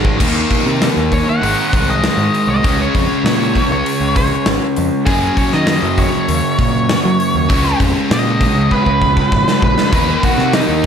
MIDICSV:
0, 0, Header, 1, 5, 480
1, 0, Start_track
1, 0, Tempo, 608519
1, 157, Time_signature, 4, 2, 24, 8
1, 8567, End_track
2, 0, Start_track
2, 0, Title_t, "Lead electric guitar"
2, 0, Program_c, 0, 29
2, 891, Note_on_c, 0, 73, 73
2, 1001, Note_off_c, 0, 73, 0
2, 1018, Note_on_c, 0, 78, 85
2, 1473, Note_off_c, 0, 78, 0
2, 1498, Note_on_c, 0, 75, 69
2, 1953, Note_off_c, 0, 75, 0
2, 1968, Note_on_c, 0, 75, 78
2, 2195, Note_off_c, 0, 75, 0
2, 2218, Note_on_c, 0, 73, 76
2, 2906, Note_off_c, 0, 73, 0
2, 2935, Note_on_c, 0, 73, 84
2, 3275, Note_off_c, 0, 73, 0
2, 3287, Note_on_c, 0, 73, 79
2, 3514, Note_off_c, 0, 73, 0
2, 3991, Note_on_c, 0, 68, 86
2, 4226, Note_off_c, 0, 68, 0
2, 4238, Note_on_c, 0, 73, 86
2, 4364, Note_off_c, 0, 73, 0
2, 4364, Note_on_c, 0, 75, 71
2, 4709, Note_off_c, 0, 75, 0
2, 4725, Note_on_c, 0, 73, 89
2, 6128, Note_off_c, 0, 73, 0
2, 6410, Note_on_c, 0, 75, 89
2, 6868, Note_off_c, 0, 75, 0
2, 6876, Note_on_c, 0, 71, 104
2, 7573, Note_off_c, 0, 71, 0
2, 7606, Note_on_c, 0, 71, 73
2, 7826, Note_off_c, 0, 71, 0
2, 7836, Note_on_c, 0, 71, 79
2, 8067, Note_off_c, 0, 71, 0
2, 8082, Note_on_c, 0, 66, 80
2, 8311, Note_off_c, 0, 66, 0
2, 8314, Note_on_c, 0, 63, 84
2, 8567, Note_off_c, 0, 63, 0
2, 8567, End_track
3, 0, Start_track
3, 0, Title_t, "Overdriven electric guitar"
3, 0, Program_c, 1, 29
3, 0, Note_on_c, 1, 44, 90
3, 0, Note_on_c, 1, 51, 108
3, 0, Note_on_c, 1, 56, 114
3, 126, Note_off_c, 1, 51, 0
3, 135, Note_on_c, 1, 51, 79
3, 144, Note_off_c, 1, 44, 0
3, 146, Note_off_c, 1, 56, 0
3, 152, Note_on_c, 1, 58, 76
3, 157, Note_on_c, 1, 63, 91
3, 1091, Note_off_c, 1, 51, 0
3, 1100, Note_off_c, 1, 58, 0
3, 1102, Note_off_c, 1, 63, 0
3, 1112, Note_on_c, 1, 44, 81
3, 1124, Note_on_c, 1, 51, 82
3, 1133, Note_on_c, 1, 56, 80
3, 2060, Note_off_c, 1, 44, 0
3, 2066, Note_off_c, 1, 51, 0
3, 2070, Note_off_c, 1, 56, 0
3, 2078, Note_on_c, 1, 49, 80
3, 2091, Note_on_c, 1, 56, 83
3, 2103, Note_on_c, 1, 61, 81
3, 3982, Note_off_c, 1, 49, 0
3, 3986, Note_on_c, 1, 42, 83
3, 3989, Note_off_c, 1, 56, 0
3, 4000, Note_on_c, 1, 49, 95
3, 4004, Note_on_c, 1, 54, 103
3, 4864, Note_off_c, 1, 61, 0
3, 5896, Note_off_c, 1, 42, 0
3, 5897, Note_off_c, 1, 49, 0
3, 5905, Note_off_c, 1, 54, 0
3, 5907, Note_on_c, 1, 49, 74
3, 5917, Note_on_c, 1, 56, 90
3, 5922, Note_on_c, 1, 61, 97
3, 7815, Note_off_c, 1, 49, 0
3, 7820, Note_off_c, 1, 56, 0
3, 7823, Note_off_c, 1, 61, 0
3, 7825, Note_on_c, 1, 51, 87
3, 7835, Note_on_c, 1, 58, 94
3, 7849, Note_on_c, 1, 63, 87
3, 8567, Note_off_c, 1, 51, 0
3, 8567, Note_off_c, 1, 58, 0
3, 8567, Note_off_c, 1, 63, 0
3, 8567, End_track
4, 0, Start_track
4, 0, Title_t, "Picked electric bass"
4, 0, Program_c, 2, 34
4, 0, Note_on_c, 2, 32, 88
4, 122, Note_off_c, 2, 32, 0
4, 164, Note_on_c, 2, 39, 92
4, 342, Note_off_c, 2, 39, 0
4, 520, Note_on_c, 2, 48, 72
4, 699, Note_off_c, 2, 48, 0
4, 763, Note_on_c, 2, 39, 74
4, 941, Note_off_c, 2, 39, 0
4, 1122, Note_on_c, 2, 32, 89
4, 1210, Note_off_c, 2, 32, 0
4, 1367, Note_on_c, 2, 36, 86
4, 1634, Note_off_c, 2, 36, 0
4, 1712, Note_on_c, 2, 44, 79
4, 1804, Note_off_c, 2, 44, 0
4, 1951, Note_on_c, 2, 36, 77
4, 2043, Note_off_c, 2, 36, 0
4, 2082, Note_on_c, 2, 37, 104
4, 2261, Note_off_c, 2, 37, 0
4, 2325, Note_on_c, 2, 41, 78
4, 2412, Note_off_c, 2, 41, 0
4, 2556, Note_on_c, 2, 46, 87
4, 2827, Note_off_c, 2, 46, 0
4, 2917, Note_on_c, 2, 37, 83
4, 3007, Note_off_c, 2, 37, 0
4, 3158, Note_on_c, 2, 37, 74
4, 3428, Note_off_c, 2, 37, 0
4, 3521, Note_on_c, 2, 32, 84
4, 3609, Note_off_c, 2, 32, 0
4, 3769, Note_on_c, 2, 41, 93
4, 3854, Note_off_c, 2, 41, 0
4, 4001, Note_on_c, 2, 42, 96
4, 4180, Note_off_c, 2, 42, 0
4, 4366, Note_on_c, 2, 51, 81
4, 4543, Note_off_c, 2, 51, 0
4, 4596, Note_on_c, 2, 42, 89
4, 4776, Note_off_c, 2, 42, 0
4, 4958, Note_on_c, 2, 39, 92
4, 5048, Note_off_c, 2, 39, 0
4, 5196, Note_on_c, 2, 46, 83
4, 5467, Note_off_c, 2, 46, 0
4, 5562, Note_on_c, 2, 54, 80
4, 5650, Note_off_c, 2, 54, 0
4, 5797, Note_on_c, 2, 39, 79
4, 5887, Note_off_c, 2, 39, 0
4, 5919, Note_on_c, 2, 37, 98
4, 6098, Note_off_c, 2, 37, 0
4, 6151, Note_on_c, 2, 41, 84
4, 6243, Note_off_c, 2, 41, 0
4, 6395, Note_on_c, 2, 46, 93
4, 6666, Note_off_c, 2, 46, 0
4, 6745, Note_on_c, 2, 37, 76
4, 6839, Note_off_c, 2, 37, 0
4, 6990, Note_on_c, 2, 37, 75
4, 7262, Note_off_c, 2, 37, 0
4, 7347, Note_on_c, 2, 32, 78
4, 7440, Note_off_c, 2, 32, 0
4, 7594, Note_on_c, 2, 34, 89
4, 7684, Note_off_c, 2, 34, 0
4, 7830, Note_on_c, 2, 39, 96
4, 8012, Note_off_c, 2, 39, 0
4, 8181, Note_on_c, 2, 48, 79
4, 8366, Note_off_c, 2, 48, 0
4, 8430, Note_on_c, 2, 39, 81
4, 8567, Note_off_c, 2, 39, 0
4, 8567, End_track
5, 0, Start_track
5, 0, Title_t, "Drums"
5, 37, Note_on_c, 9, 36, 81
5, 116, Note_off_c, 9, 36, 0
5, 159, Note_on_c, 9, 36, 110
5, 161, Note_on_c, 9, 49, 121
5, 238, Note_off_c, 9, 36, 0
5, 240, Note_off_c, 9, 49, 0
5, 399, Note_on_c, 9, 36, 78
5, 402, Note_on_c, 9, 46, 57
5, 478, Note_off_c, 9, 36, 0
5, 481, Note_off_c, 9, 46, 0
5, 645, Note_on_c, 9, 38, 110
5, 645, Note_on_c, 9, 46, 72
5, 723, Note_off_c, 9, 46, 0
5, 724, Note_off_c, 9, 38, 0
5, 882, Note_on_c, 9, 36, 65
5, 883, Note_on_c, 9, 46, 46
5, 961, Note_off_c, 9, 36, 0
5, 962, Note_off_c, 9, 46, 0
5, 1131, Note_on_c, 9, 46, 75
5, 1210, Note_off_c, 9, 46, 0
5, 1365, Note_on_c, 9, 36, 84
5, 1368, Note_on_c, 9, 46, 56
5, 1444, Note_off_c, 9, 36, 0
5, 1447, Note_off_c, 9, 46, 0
5, 1606, Note_on_c, 9, 38, 105
5, 1606, Note_on_c, 9, 46, 70
5, 1685, Note_off_c, 9, 38, 0
5, 1685, Note_off_c, 9, 46, 0
5, 1849, Note_on_c, 9, 46, 50
5, 1928, Note_off_c, 9, 46, 0
5, 2086, Note_on_c, 9, 36, 112
5, 2087, Note_on_c, 9, 46, 79
5, 2164, Note_off_c, 9, 36, 0
5, 2166, Note_off_c, 9, 46, 0
5, 2325, Note_on_c, 9, 36, 87
5, 2328, Note_on_c, 9, 46, 53
5, 2404, Note_off_c, 9, 36, 0
5, 2407, Note_off_c, 9, 46, 0
5, 2570, Note_on_c, 9, 38, 103
5, 2570, Note_on_c, 9, 46, 72
5, 2649, Note_off_c, 9, 38, 0
5, 2649, Note_off_c, 9, 46, 0
5, 2804, Note_on_c, 9, 36, 71
5, 2809, Note_on_c, 9, 46, 45
5, 2883, Note_off_c, 9, 36, 0
5, 2888, Note_off_c, 9, 46, 0
5, 3047, Note_on_c, 9, 46, 80
5, 3126, Note_off_c, 9, 46, 0
5, 3282, Note_on_c, 9, 36, 79
5, 3283, Note_on_c, 9, 46, 62
5, 3361, Note_off_c, 9, 36, 0
5, 3362, Note_off_c, 9, 46, 0
5, 3517, Note_on_c, 9, 46, 77
5, 3518, Note_on_c, 9, 38, 110
5, 3596, Note_off_c, 9, 46, 0
5, 3597, Note_off_c, 9, 38, 0
5, 3758, Note_on_c, 9, 46, 61
5, 3837, Note_off_c, 9, 46, 0
5, 3996, Note_on_c, 9, 36, 119
5, 3996, Note_on_c, 9, 46, 83
5, 4074, Note_off_c, 9, 46, 0
5, 4075, Note_off_c, 9, 36, 0
5, 4236, Note_on_c, 9, 36, 88
5, 4236, Note_on_c, 9, 46, 56
5, 4315, Note_off_c, 9, 36, 0
5, 4315, Note_off_c, 9, 46, 0
5, 4355, Note_on_c, 9, 38, 27
5, 4434, Note_off_c, 9, 38, 0
5, 4471, Note_on_c, 9, 46, 82
5, 4472, Note_on_c, 9, 38, 104
5, 4550, Note_off_c, 9, 46, 0
5, 4551, Note_off_c, 9, 38, 0
5, 4715, Note_on_c, 9, 36, 77
5, 4716, Note_on_c, 9, 46, 50
5, 4794, Note_off_c, 9, 36, 0
5, 4795, Note_off_c, 9, 46, 0
5, 4958, Note_on_c, 9, 46, 79
5, 5037, Note_off_c, 9, 46, 0
5, 5196, Note_on_c, 9, 36, 83
5, 5199, Note_on_c, 9, 46, 50
5, 5274, Note_off_c, 9, 36, 0
5, 5278, Note_off_c, 9, 46, 0
5, 5438, Note_on_c, 9, 46, 71
5, 5439, Note_on_c, 9, 38, 105
5, 5517, Note_off_c, 9, 46, 0
5, 5518, Note_off_c, 9, 38, 0
5, 5679, Note_on_c, 9, 46, 56
5, 5758, Note_off_c, 9, 46, 0
5, 5915, Note_on_c, 9, 36, 119
5, 5920, Note_on_c, 9, 46, 85
5, 5994, Note_off_c, 9, 36, 0
5, 5999, Note_off_c, 9, 46, 0
5, 6154, Note_on_c, 9, 36, 78
5, 6157, Note_on_c, 9, 46, 52
5, 6232, Note_off_c, 9, 36, 0
5, 6235, Note_off_c, 9, 46, 0
5, 6398, Note_on_c, 9, 46, 70
5, 6399, Note_on_c, 9, 38, 117
5, 6477, Note_off_c, 9, 46, 0
5, 6478, Note_off_c, 9, 38, 0
5, 6632, Note_on_c, 9, 36, 80
5, 6636, Note_on_c, 9, 46, 49
5, 6711, Note_off_c, 9, 36, 0
5, 6715, Note_off_c, 9, 46, 0
5, 6873, Note_on_c, 9, 36, 66
5, 6951, Note_off_c, 9, 36, 0
5, 6992, Note_on_c, 9, 36, 49
5, 7071, Note_off_c, 9, 36, 0
5, 7112, Note_on_c, 9, 36, 69
5, 7191, Note_off_c, 9, 36, 0
5, 7232, Note_on_c, 9, 36, 70
5, 7311, Note_off_c, 9, 36, 0
5, 7352, Note_on_c, 9, 36, 80
5, 7431, Note_off_c, 9, 36, 0
5, 7477, Note_on_c, 9, 38, 78
5, 7556, Note_off_c, 9, 38, 0
5, 7591, Note_on_c, 9, 36, 86
5, 7670, Note_off_c, 9, 36, 0
5, 7712, Note_on_c, 9, 38, 78
5, 7791, Note_off_c, 9, 38, 0
5, 7830, Note_on_c, 9, 36, 116
5, 7832, Note_on_c, 9, 46, 92
5, 7909, Note_off_c, 9, 36, 0
5, 7911, Note_off_c, 9, 46, 0
5, 8072, Note_on_c, 9, 36, 87
5, 8074, Note_on_c, 9, 46, 59
5, 8151, Note_off_c, 9, 36, 0
5, 8152, Note_off_c, 9, 46, 0
5, 8196, Note_on_c, 9, 38, 26
5, 8275, Note_off_c, 9, 38, 0
5, 8309, Note_on_c, 9, 46, 79
5, 8310, Note_on_c, 9, 38, 106
5, 8388, Note_off_c, 9, 46, 0
5, 8389, Note_off_c, 9, 38, 0
5, 8567, End_track
0, 0, End_of_file